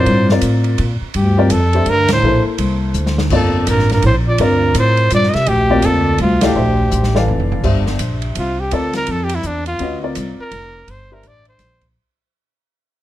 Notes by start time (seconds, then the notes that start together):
Already playing: A2 C4 F4 A#4 C5 D5
0.06 G2, ride
0.29 C4 F4 A#4 D5, snare
0.41 A2, hi-hat pedal, ride
0.64 ride
0.78 A#2, ride
1.01 muted upright bass stroke
1.14 D2 G2 G4, ride
1.37 C4 F4 A#4 D5
1.50 F2 A4, hi-hat pedal, ride
1.73 D4 G4 C5 E5, ride
1.86 D2 G2 A#4, ride
2.08 A2, snare, ride
2.13 C5
2.22 A#1 A#3 E4 A4 C5
2.45 muted upright bass stroke
2.58 C2, ride
2.94 D2, hi-hat pedal
3.07 snare
3.18 snare
3.30 G1 A#3 C4 F4 D5, kick, crash
3.34 F2 A4
3.67 A1 G2 A#4, hi-hat pedal, ride
3.79 snare
3.89 G2 A#4, snare, ride
4.02 A#1 A2, ride
4.06 C5
4.28 A#2 D5
4.38 D2 G2 C4 F4 A#4 D5, ride
4.74 A2, hi-hat pedal, ride
4.79 C5
4.97 ride
5.10 G2 A#2 D5, hi-hat pedal, ride
5.23 snare
5.28 A#2 D#5
5.33 C3 E5, muted upright bass stroke, snare, ride
5.46 A#1 D2 G4, ride
5.69 A#3 C4 F4 D5
5.82 D2 F2 A4, hi-hat pedal, ride
6.18 C2 D2 F4, ride
6.41 D2 E4 G4 A4 D5 F5, snare, ride
6.55 A#1 D4 G4 C5 E5
6.91 A1, hi-hat pedal
7.04 snare
7.14 E3 A4 D5 F5, snare
7.28 F1, floor tom
7.40 floor tom
7.52 floor tom
7.63 G1 D4 G4 C5 E5, kick, crash
7.87 snare
7.99 A#1, hi-hat pedal, ride
8.22 ride
8.35 C2 F4, ride
8.60 G4
8.71 D2 C4 F4 A4 A#4 D5, ride
8.93 A#4, snare, ride
9.07 F2, ride
9.11 A4
9.24 G4
9.29 ride
9.35 E4
9.43 E2, hi-hat pedal
9.47 D4
9.66 F4, ride
9.79 D2 C#4 F#4 B4 D#5, ride
10.02 C4 F4 A#4 D5
10.15 C2, hi-hat pedal, ride
10.39 A#4, muted upright bass stroke
10.51 F1, ride
10.87 G1 C5, ride
11.11 D4 G4 A#4 C5 E5
11.23 A1, hi-hat pedal, ride
11.27 D5
11.45 C5, ride
11.58 A#1, snare, hi-hat pedal, ride
11.81 kick, ride